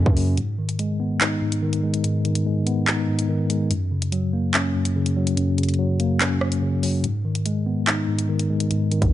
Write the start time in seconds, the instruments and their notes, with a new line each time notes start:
Already playing: tine electric piano F#2 C#3 F#3 A#3 C#4
0.06 808-style bass F#2, kick
0.16 tine electric piano F#3, open hi-hat
0.37 tine electric piano G#2, closed hi-hat
0.58 tine electric piano D#3
0.69 closed hi-hat
0.79 tine electric piano G#3, closed hi-hat
1.00 tine electric piano B3
1.21 tine electric piano D#4, clap, closed hi-hat
1.42 tine electric piano G#2
1.52 closed hi-hat
1.62 tine electric piano D#3
1.73 closed hi-hat
1.84 tine electric piano G#3
1.94 closed hi-hat
2.04 tine electric piano G#2, closed hi-hat
2.25 tine electric piano D#3, closed hi-hat
2.35 closed hi-hat
2.46 tine electric piano G#3
2.67 tine electric piano B3, closed hi-hat
2.87 tine electric piano D#4, clap, closed hi-hat
3.08 tine electric piano G#2
3.19 closed hi-hat
3.29 tine electric piano D#3
3.50 tine electric piano G#3, closed hi-hat
3.70 tine electric piano F#2, closed hi-hat
3.91 tine electric piano C#3
4.02 closed hi-hat
4.12 tine electric piano F#3, closed hi-hat
4.33 tine electric piano A#3
4.54 tine electric piano C#4, clap, closed hi-hat
4.75 tine electric piano F#2
4.85 closed hi-hat
4.96 tine electric piano C#3
5.06 closed hi-hat
5.16 tine electric piano F#3
5.27 closed hi-hat
5.37 tine electric piano F#2, closed hi-hat
5.58 tine electric piano C#3, closed hi-hat
5.63 closed hi-hat
5.69 closed hi-hat
5.74 closed hi-hat
5.79 tine electric piano F#3
6.00 tine electric piano A#3, closed hi-hat
6.21 tine electric piano C#4, clap, closed hi-hat
6.41 tine electric piano F#2, cross-stick
6.52 closed hi-hat
6.62 tine electric piano C#3
6.83 tine electric piano F#3, open hi-hat
7.04 tine electric piano G#2, closed hi-hat
7.25 tine electric piano D#3
7.35 closed hi-hat
7.46 tine electric piano G#3, closed hi-hat
7.66 tine electric piano B3
7.87 tine electric piano D#4, clap, closed hi-hat
8.08 tine electric piano G#2
8.19 closed hi-hat
8.29 tine electric piano D#3
8.39 closed hi-hat
8.50 tine electric piano G#3
8.60 closed hi-hat
8.71 tine electric piano G#2, closed hi-hat
8.92 tine electric piano D#3, closed hi-hat
9.02 808-style bass G#1, kick, closed hi-hat